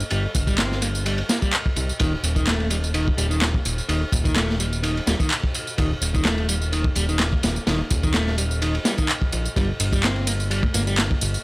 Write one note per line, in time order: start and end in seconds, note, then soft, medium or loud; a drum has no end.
0.00 tambourine soft
0.10 0.27 G1 loud
0.10 0.23 G3 medium
0.10 ride medium
0.10 tambourine soft
0.35 1.23 G1 medium
0.35 kick medium
0.35 ride medium
0.35 tambourine medium
0.47 0.57 G3 loud
0.47 kick loud
0.47 tambourine soft
0.58 0.81 C4 medium
0.58 snare loud
0.58 clap loud
0.58 ride medium
0.58 tambourine soft
0.72 snare medium
0.82 0.87 A#3 medium
0.82 ride medium
0.82 tambourine medium
0.95 tambourine soft
1.06 1.17 G3 medium
1.06 ride medium
1.06 tambourine soft
1.18 ride soft
1.29 1.37 A#3 loud
1.29 snare loud
1.29 ride medium
1.29 tambourine medium
1.42 1.52 G3 loud
1.42 kick loud
1.42 tambourine soft
1.53 clap loud
1.53 ride medium
1.53 tambourine soft
1.66 kick medium
1.76 1.92 C2 medium
1.76 ride medium
1.76 tambourine medium
1.89 tambourine soft
2.00 2.16 D#1 loud
2.00 2.12 D#3 medium
2.00 kick loud
2.00 ride loud
2.00 tambourine soft
2.23 3.12 D#1 medium
2.23 ride medium
2.23 tambourine medium
2.36 2.46 D#3 loud
2.36 kick medium
2.36 tambourine soft
2.47 2.70 A3 medium
2.47 snare loud
2.47 clap loud
2.47 ride medium
2.47 tambourine soft
2.60 ride soft
2.70 2.76 G3 medium
2.70 ride medium
2.70 tambourine medium
2.84 tambourine soft
2.94 3.06 D#3 medium
2.94 ride medium
2.94 tambourine soft
3.08 kick medium
3.17 3.59 D#1 loud
3.17 3.26 G3 loud
3.17 ride medium
3.17 tambourine medium
3.30 3.40 D#3 loud
3.30 tambourine soft
3.42 snare loud
3.42 clap loud
3.42 ride medium
3.42 tambourine soft
3.54 kick loud
3.65 3.81 D#1 medium
3.65 ride medium
3.65 tambourine medium
3.78 tambourine soft
3.89 4.05 D#1 loud
3.89 4.00 D#3 medium
3.89 ride medium
3.89 tambourine soft
4.12 5.01 D#1 loud
4.12 kick loud
4.12 ride medium
4.12 tambourine medium
4.25 4.35 D#3 loud
4.25 kick loud
4.25 tambourine soft
4.36 4.59 A3 medium
4.36 snare loud
4.36 clap loud
4.36 ride medium
4.36 tambourine soft
4.49 snare soft
4.59 4.64 G3 medium
4.59 ride medium
4.59 tambourine medium
4.73 tambourine soft
4.83 4.95 D#3 medium
4.83 ride medium
4.83 tambourine soft
4.97 ride soft
5.07 5.15 D#1 loud
5.07 5.15 G3 loud
5.07 snare loud
5.07 ride medium
5.07 tambourine medium
5.19 5.30 D#3 loud
5.19 kick loud
5.19 tambourine soft
5.30 clap loud
5.30 ride medium
5.30 tambourine soft
5.44 kick medium
5.54 ride medium
5.54 tambourine medium
5.67 tambourine soft
5.78 5.94 D#1 loud
5.78 5.90 D#3 medium
5.78 kick loud
5.78 ride medium
5.78 tambourine soft
6.02 6.90 D#1 loud
6.02 ride medium
6.02 tambourine medium
6.14 6.24 D#3 loud
6.14 kick loud
6.14 tambourine soft
6.25 6.48 A3 medium
6.25 snare loud
6.25 clap loud
6.25 ride medium
6.25 tambourine soft
6.38 ride soft
6.49 6.54 G3 medium
6.49 ride medium
6.49 tambourine medium
6.62 tambourine soft
6.72 6.84 D#3 medium
6.72 ride medium
6.72 tambourine soft
6.84 kick loud
6.95 7.37 D#1 loud
6.95 7.04 G3 loud
6.95 ride medium
6.95 tambourine medium
7.09 7.19 D#3 loud
7.09 tambourine soft
7.19 snare loud
7.19 clap loud
7.19 ride medium
7.19 tambourine soft
7.33 kick medium
7.43 7.59 D#1 medium
7.43 snare loud
7.43 ride medium
7.43 tambourine medium
7.56 tambourine soft
7.67 7.83 D#1 loud
7.67 7.79 D#3 medium
7.67 snare loud
7.67 ride medium
7.67 tambourine soft
7.90 8.79 D#1 medium
7.90 kick loud
7.90 ride medium
7.90 tambourine medium
8.03 8.13 D#3 loud
8.03 kick loud
8.03 tambourine soft
8.14 8.37 A3 medium
8.14 snare loud
8.14 clap loud
8.14 ride medium
8.14 tambourine soft
8.27 snare soft
8.38 8.43 G3 medium
8.38 ride medium
8.38 tambourine medium
8.51 tambourine soft
8.62 8.73 D#3 medium
8.62 ride medium
8.62 tambourine soft
8.75 ride soft
8.85 8.93 G3 loud
8.85 snare loud
8.85 ride medium
8.85 tambourine medium
8.98 9.08 D#3 loud
8.98 kick loud
8.98 tambourine soft
9.09 clap loud
9.09 ride medium
9.09 tambourine soft
9.22 kick loud
9.32 9.48 A#1 medium
9.32 ride medium
9.32 tambourine medium
9.45 tambourine soft
9.56 9.72 G1 loud
9.56 9.68 G3 medium
9.56 kick loud
9.56 ride medium
9.56 tambourine soft
9.80 10.68 G1 medium
9.80 ride medium
9.80 tambourine medium
9.93 10.02 G3 loud
9.93 kick medium
9.93 tambourine soft
10.03 10.26 C4 medium
10.03 snare loud
10.03 clap loud
10.03 ride medium
10.03 tambourine soft
10.16 ride soft
10.27 10.32 A#3 medium
10.27 ride medium
10.27 tambourine medium
10.40 tambourine soft
10.51 10.62 G3 medium
10.51 ride medium
10.51 tambourine soft
10.63 kick loud
10.63 high conga medium
10.74 11.15 G1 loud
10.74 10.82 A#3 loud
10.74 ride medium
10.74 tambourine medium
10.74 high conga medium
10.87 10.97 G3 loud
10.87 tambourine soft
10.98 snare loud
10.98 clap loud
10.98 ride loud
10.98 tambourine soft
11.11 kick loud
11.21 11.37 G1 medium
11.21 ride medium
11.21 tambourine medium
11.34 tambourine soft